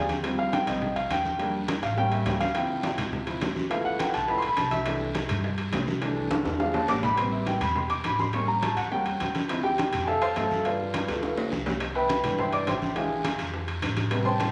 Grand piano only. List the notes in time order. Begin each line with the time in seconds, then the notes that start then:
Already playing: D3 G#3 C4
0.23 F3 G3 C4
0.39 F5
0.53 G5
0.66 F3 G3 C4 D#5
0.96 F5
1.11 G5
1.39 G3 A#3 D4
1.83 F5
1.97 G3 A#3 C#4 G5
2.12 E5
2.40 F5
2.55 F3 C4 E4 G5
3.27 F3 C4 E4
3.70 F3 A3 B3 E4 F5
3.85 F#5
3.99 G5
4.14 A5
4.28 F3 A3 B3 E4 B5
4.38 C6
4.47 B5
4.57 A5
4.71 E5
4.85 E3 A3 D4
6.01 E3 A3 D4
6.59 F3 G#3 D4 F5
6.74 A5
6.89 D6
7.03 B5
7.17 G3 B3 C4 C6
7.32 E5
7.47 G5
7.61 B5
7.76 C6
7.90 D6
8.05 B5
8.20 C6
8.33 G3 A#3 C#4 C#6
8.48 A#5
8.63 A5
8.77 F#5
8.91 G3 A#3 C#4 G5
9.48 F3 C4 E4
9.63 G4 G5
10.03 G#5
10.07 A4 E5 F5 A5
10.22 C5 F5 A5 C6
10.36 A4 E5 F5 A5
10.66 F4 B4 D5 F5
11.08 A3 B3 F4
11.95 B4 E5 G5 B5
12.23 E3 B3 D4
12.39 C5 E5 G5 C6
12.53 D5 D6
12.68 C5 E5 G5 C6
12.95 E3 G#3 D4 G#4 E5 F5 G#5
14.10 C3 G3 B3
14.25 C5 G5 A5 C6